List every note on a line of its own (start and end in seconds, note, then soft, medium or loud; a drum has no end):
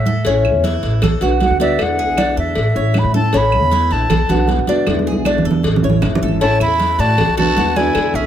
0.00 0.23 A2 medium
0.00 0.46 E5 medium
0.06 0.25 A4 medium
0.06 high conga medium
0.25 0.54 A1 loud
0.25 1.01 E3 medium
0.25 1.02 A3 medium
0.25 0.63 C#4 medium
0.25 1.02 C#4 medium
0.25 1.03 E4 medium
0.25 cowbell loud
0.25 high conga soft
0.45 high conga soft
0.45 claves medium
0.54 0.81 E2 loud
0.64 1.01 E4 medium
0.64 cowbell medium
0.64 high conga medium
0.83 1.01 A1 medium
0.83 cowbell medium
0.83 high conga soft
1.02 1.20 B1 loud
1.02 1.21 A4 medium
1.02 muted nylon-string guitar stroke medium
1.02 cowbell loud
1.02 high conga soft
1.02 low conga medium
1.02 claves medium
1.21 1.49 B1 loud
1.21 1.38 D3 medium
1.21 1.39 A3 medium
1.21 1.40 B3 medium
1.21 1.39 F#4 medium
1.21 1.59 F#4 medium
1.21 cowbell medium
1.21 high conga soft
1.39 1.58 D3 soft
1.39 1.59 A3 medium
1.39 1.58 B3 medium
1.39 1.58 F#4 medium
1.39 1.60 F#5 medium
1.39 cowbell medium
1.39 high conga medium
1.50 1.77 D2 medium
1.59 1.78 D3 medium
1.59 1.78 A3 medium
1.59 1.78 B3 medium
1.59 1.98 D4 loud
1.59 1.78 F#4 medium
1.59 1.84 E5 medium
1.59 cowbell medium
1.59 high conga medium
1.79 2.08 E2 loud
1.79 2.55 B2 medium
1.79 2.56 D3 medium
1.79 2.56 G#3 medium
1.79 2.56 B3 medium
1.79 2.57 E4 medium
1.79 2.38 F#5 loud
1.79 cowbell loud
1.79 high conga soft
1.79 claves medium
1.98 2.17 G#4 medium
1.98 high conga soft
2.08 2.35 B1 medium
2.17 2.36 D4 medium
2.17 cowbell medium
2.17 high conga loud
2.17 claves medium
2.37 2.55 E2 medium
2.37 2.74 A4 medium
2.37 3.00 E5 medium
2.37 high conga soft
2.55 2.74 A1 loud
2.55 muted nylon-string guitar stroke medium
2.55 cowbell loud
2.55 high conga soft
2.75 3.03 A1 loud
2.75 2.94 A3 medium
2.75 2.94 C#4 medium
2.75 2.94 E4 medium
2.75 3.13 C#5 medium
2.75 high conga soft
2.94 3.13 E3 medium
2.94 3.13 A3 medium
2.94 3.14 C#4 medium
2.94 3.13 E4 medium
2.94 cowbell medium
2.94 high conga medium
2.94 claves medium
2.98 3.15 B5 medium
3.04 3.32 A2 medium
3.14 3.33 A3 medium
3.14 3.33 C#4 medium
3.14 3.32 E4 medium
3.14 3.33 A4 medium
3.14 3.39 A5 medium
3.14 high conga medium
3.33 3.62 A1 loud
3.33 4.09 E3 medium
3.33 4.10 A3 medium
3.33 3.71 C#4 medium
3.33 4.10 C#4 medium
3.33 4.11 E4 medium
3.33 cowbell loud
3.33 high conga soft
3.37 3.94 B5 loud
3.52 high conga soft
3.52 claves medium
3.62 3.90 E2 medium
3.72 4.09 E4 medium
3.72 cowbell medium
3.72 high conga medium
3.91 4.09 A#1 medium
3.91 4.49 A5 loud
3.91 cowbell medium
3.91 high conga soft
4.10 4.29 B1 loud
4.10 4.29 A4 medium
4.10 muted nylon-string guitar stroke medium
4.10 cowbell loud
4.10 high conga soft
4.10 low conga medium
4.10 claves medium
4.29 4.57 B1 loud
4.29 4.48 D3 medium
4.29 4.48 A3 medium
4.29 4.48 B3 medium
4.29 4.48 F#4 medium
4.29 4.67 F#4 medium
4.29 cowbell medium
4.29 high conga soft
4.29 low conga medium
4.48 4.67 A3 medium
4.48 4.68 B3 medium
4.48 4.67 F#4 medium
4.48 cowbell medium
4.48 high conga medium
4.59 4.86 B2 medium
4.67 4.87 D3 medium
4.67 4.87 A3 medium
4.67 4.87 B3 medium
4.67 5.06 D4 medium
4.67 4.86 F#4 medium
4.67 cowbell medium
4.67 high conga medium
4.86 5.16 E2 loud
4.86 5.63 B2 medium
4.86 5.64 D3 medium
4.86 5.64 G#3 medium
4.86 5.65 B3 medium
4.86 5.64 E4 medium
4.86 cowbell loud
4.86 high conga loud
4.86 claves medium
4.99 high conga medium
5.07 5.25 G#4 medium
5.12 high conga medium
5.16 5.44 B1 loud
5.25 5.45 D4 medium
5.25 cowbell medium
5.25 high conga medium
5.25 claves medium
5.38 low conga medium
5.45 5.63 E2 medium
5.45 5.82 A4 medium
5.51 low conga loud
5.63 5.82 A1 medium
5.63 muted nylon-string guitar stroke medium
5.63 cowbell loud
5.63 low conga medium
5.76 low conga loud
5.82 6.02 A1 loud
5.82 6.02 A3 medium
5.82 6.02 C#4 medium
5.82 6.01 E4 medium
5.82 6.21 C#5 medium
5.90 low conga medium
6.02 6.20 F#1 medium
6.02 6.21 E3 medium
6.02 6.21 A3 medium
6.02 6.22 C#4 medium
6.02 6.21 E4 medium
6.02 cowbell medium
6.02 low conga medium
6.02 claves medium
6.15 low conga loud
6.22 6.39 G#1 medium
6.22 6.41 A3 medium
6.22 6.41 C#4 medium
6.22 6.40 E4 medium
6.22 6.41 A4 medium
6.28 low conga medium
6.41 6.59 A1 medium
6.41 7.17 E3 medium
6.41 7.18 A3 medium
6.41 6.60 C#4 medium
6.41 7.19 C#4 medium
6.41 6.59 E4 medium
6.41 7.19 E4 medium
6.41 6.59 A5 loud
6.41 cowbell loud
6.60 6.97 E2 loud
6.60 7.01 E4 medium
6.60 6.98 E4 medium
6.60 7.01 B5 loud
6.60 high conga soft
6.60 claves medium
6.80 cowbell medium
6.80 high conga medium
6.99 7.17 A2 loud
6.99 7.37 F#4 medium
6.99 7.37 D5 medium
6.99 7.38 A5 loud
6.99 cowbell medium
6.99 high conga soft
7.18 7.27 B1 loud
7.18 muted nylon-string guitar stroke medium
7.18 cowbell loud
7.18 high conga soft
7.18 low conga medium
7.18 claves medium
7.27 7.55 B1 medium
7.37 7.56 D3 medium
7.37 7.57 A3 medium
7.37 7.56 B3 medium
7.37 7.56 F#4 medium
7.37 7.79 F#4 loud
7.37 7.56 A4 medium
7.37 7.78 A5 loud
7.37 cowbell medium
7.37 high conga soft
7.37 low conga medium
7.56 7.93 D#2 medium
7.56 7.75 D3 medium
7.56 7.76 A3 medium
7.56 7.76 B3 medium
7.56 7.76 F#4 medium
7.56 7.75 F#4 medium
7.56 cowbell medium
7.56 high conga loud
7.76 7.95 D3 medium
7.76 7.95 A3 medium
7.76 7.95 B3 medium
7.76 8.17 E4 medium
7.76 7.94 F#4 medium
7.76 8.13 D5 medium
7.76 8.17 G#5 loud
7.76 cowbell medium
7.76 high conga medium
7.95 8.13 E2 loud
7.95 8.27 B2 medium
7.95 8.27 D3 medium
7.95 8.27 G#3 medium
7.95 8.27 B3 medium
7.95 8.27 E4 medium
7.95 cowbell loud
7.95 high conga soft
7.95 claves medium
8.14 8.27 B1 loud
8.14 8.27 C#4 medium
8.14 8.27 G#4 medium
8.14 8.27 E5 medium
8.14 high conga soft